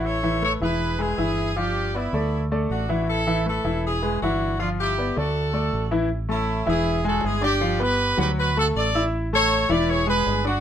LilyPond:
<<
  \new Staff \with { instrumentName = "Grand piano" } { \time 4/4 \key a \major \tempo 4 = 158 <e e' e''>8 <e e' e''>8 <a a' b'>8 <e e' e''>4 <gis gis' b'>8 <e e' e''>4 | <f f' f''>4 <b b' d''>8 <a a' d''>4 <a a' d''>4 <e e' e''>8~ | <e e' e''>8 <e e' e''>8 <a a' b'>8 <e e' e''>4 <gis gis' b'>8 <e e' e''>4 | <f f' f''>4 <b b' d''>8 <a a' d''>4 <a a' d''>4 <e e' e''>8 |
r8 <a a' a''>4 <e e' e''>4 <gis gis' gis''>4 <d' d'' d'''>8 | <f f' f''>8 <b b' b''>4 <fis fis' fis''>4 <a a' a''>4 <e' e'' e'''>8~ | <e' e'' e'''>8 <a a' a''>4 <e e' e''>4 <gis gis' gis''>4 <d' d'' d'''>8 | }
  \new Staff \with { instrumentName = "Horn section" } { \time 4/4 \key a \major <a' cis''>4 <a' cis''>8 <gis' b'>4 <e' gis'>4. | <d' g'>4 <b e'>4. r8 <d' fis'>4 | <e' a'>4 <e' a'>4 <e' gis'>4 <d' fis'>4 | <d' f'>8 <e' g'>4 <fis' a'>2 r8 |
r8 <cis' e'>4 <e' gis'>4 <fis' a'>8 <e' gis'>8 <d' g'>8~ | <d' g'>8 <g' b'>4 <g' b'>8 <fis' b'>8 <fis' a'>8 <a' d''>8. r16 | r8 <a' cis''>4 <b' d''>8 <gis' cis''>8 <gis' b'>4 <d' fis'>8 | }
  \new Staff \with { instrumentName = "Fingered electric bass" } { \clef bass \time 4/4 \key a \major a,,4. e,,4. g,,4~ | g,,4. d,4. a,,4~ | a,,4. e,,4. g,,4~ | g,,4. d,4. a,,4~ |
a,,4. e,,4. g,,4~ | g,,4. d,4. a,,4~ | a,,4. e,,4. g,,4 | }
>>